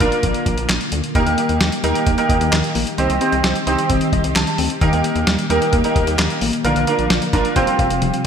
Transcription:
Already playing: D3 A#3 F4
0.00 A#1 A#3 D4 F4 A#4, kick, closed hi-hat
0.12 closed hi-hat
0.23 A#1, kick, closed hi-hat
0.34 closed hi-hat
0.46 A#1, kick, closed hi-hat
0.58 A#1, closed hi-hat
0.69 A#1, snare, clap, closed hi-hat
0.81 closed hi-hat
0.92 D2, closed hi-hat
1.04 closed hi-hat
1.15 D#2 D#3 A#3 D#4 G4 A#4, kick, closed hi-hat
1.26 D#2, closed hi-hat
1.38 A#3, closed hi-hat
1.49 D#2, closed hi-hat
1.61 D#2 G3, snare, closed hi-hat
1.72 closed hi-hat
1.84 D#2 A#3 D#4 G4 A#4, closed hi-hat
1.95 closed hi-hat
2.07 D#2 A#3, kick, closed hi-hat
2.18 A#3 D#4 G4 A#4, closed hi-hat
2.29 D#2 D#5, kick, closed hi-hat
2.41 D#2, closed hi-hat
2.52 D#2 D#3, snare, clap, closed hi-hat
2.64 closed hi-hat
2.75 A#1 A#3, open hi-hat
2.87 closed hi-hat
2.98 C2 D#3 C4 D#4 G4 C5, closed hi-hat
3.10 C2, closed hi-hat
3.21 C4 D#4 G4 C5, closed hi-hat
3.32 C2, closed hi-hat
3.44 C2 G3, snare, closed hi-hat
3.55 closed hi-hat
3.67 C2 C4 D#4 G4 C5 D#5, closed hi-hat
3.79 closed hi-hat
3.90 C2 C4 G5, kick, closed hi-hat
4.01 closed hi-hat
4.13 C2 D#5, kick, closed hi-hat
4.24 C2, closed hi-hat
4.35 C2 D#3 A5, snare, clap, closed hi-hat
4.47 closed hi-hat
4.58 D2 C4, open hi-hat
4.70 closed hi-hat
4.81 D#2 D#3 A#3 D#4 G4 A#4, kick, closed hi-hat
4.93 D#2, closed hi-hat
5.04 A#3, closed hi-hat
5.16 D#2, closed hi-hat
5.27 D#2 G3, snare, closed hi-hat
5.39 closed hi-hat
5.50 D#2 A#3 D#4 G4 A#4, closed hi-hat
5.62 closed hi-hat
5.73 D#2 A#3, kick, closed hi-hat
5.84 A#3 D#4 G4 A#4, closed hi-hat
5.96 D#2 D#5, kick, closed hi-hat
6.07 D#2, closed hi-hat
6.18 D#2 D#3, snare, clap, closed hi-hat
6.30 closed hi-hat
6.41 A1 A#3, open hi-hat
6.53 closed hi-hat
6.64 A#1 D3 A#3 D4 F4 A#4, closed hi-hat
6.76 A#1, closed hi-hat
6.87 A#3 D4 F4 A#4, closed hi-hat
6.99 A#1, closed hi-hat
7.10 A#1 F3, snare, closed hi-hat
7.22 closed hi-hat
7.33 A#1 A#3 D4 F4 A#4, kick, closed hi-hat
7.45 closed hi-hat
7.56 F1 C3 G3 C4 F4 G4 C5, kick, closed hi-hat
7.67 closed hi-hat
7.79 F1 F5, kick, closed hi-hat
7.90 F1, closed hi-hat
8.02 F1 F3, closed hi-hat, high tom
8.14 closed hi-hat

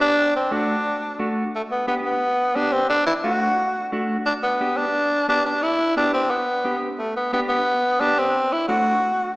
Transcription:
0.01 D4
0.36 C4
0.51 A3 D4 F#4
1.19 A3 D4 F#4
1.55 A3
1.71 B3
1.87 B3 D4 G4
2.05 B3
2.55 B3 D4 G4
2.73 C4
2.90 D4
3.07 E4
3.24 A3 D4 F#4
3.92 A3 D4 F#4
4.26 D4
4.43 B3
4.61 B3 D4 G4
4.77 D4
5.28 B3 D4 G4
5.46 D4
5.62 E4
5.96 B3 D4 G4
6.14 C4
6.30 B3
6.64 B3 D4 G4
6.98 A3
7.16 B3
7.32 B3 D4 G4
7.49 B3
8.00 B3 D4 G4
8.19 C4
8.53 E4
8.68 A3 D4 F#4

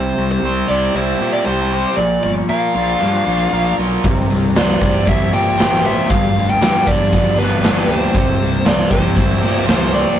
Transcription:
Already playing: C2 C3 C5
0.18 C2 G3
0.32 C5
0.42 C2 C4 C5
0.69 C2 E4 G4 D5
0.95 C2 C4 E4 C5
1.21 A#2 E4 G4
1.34 D5
1.46 C2 G4 C5
1.73 G4 C5
1.97 A#1 A#2 D5
2.23 G1 F3 D5
2.49 A#2 A#3 A#4 F5
2.75 A#1 D4 F4
3.00 G2 A#3 D4
3.26 A#1 D4 F4
3.53 A#1 F4 A#4
3.78 B1 F4 A#4
4.04 C2 C3, kick, closed hi-hat
4.30 C2 G3, closed hi-hat
4.55 C2 C4 C5 D5, snare, closed hi-hat
4.81 C2 E4 G4, kick, closed hi-hat
5.06 C2 C4 E4 E5, kick, closed hi-hat
5.32 A#2 E4 G4 G5, closed hi-hat
5.57 A1 G4 C5, snare, closed hi-hat
5.73 snare
5.83 G4 C5 E5, closed hi-hat
6.09 G1 G2 F5, kick, closed hi-hat
6.35 F1 D3, closed hi-hat
6.50 G5
6.61 G2 G3 G4, snare, closed hi-hat
6.86 G1 B3 D4 D5, kick, closed hi-hat
7.12 F2 G3 B3, kick, closed hi-hat
7.37 G1 B3 D4 B4, snare, closed hi-hat
7.62 G1 D4 G4, snare, closed hi-hat
7.77 snare
7.88 D2 D4 G4 C5, closed hi-hat
8.13 C2 C3, kick, closed hi-hat
8.39 C2 G3, closed hi-hat
8.65 C2 C4 C5 D5, snare, closed hi-hat
8.91 C2 E4 G4 C5, kick, closed hi-hat
9.16 C2 C4 E4, kick, closed hi-hat
9.41 A#2 E4 G4, snare, closed hi-hat
9.66 C2 G4 C5, snare, closed hi-hat
9.92 G4 C5 D5, closed hi-hat

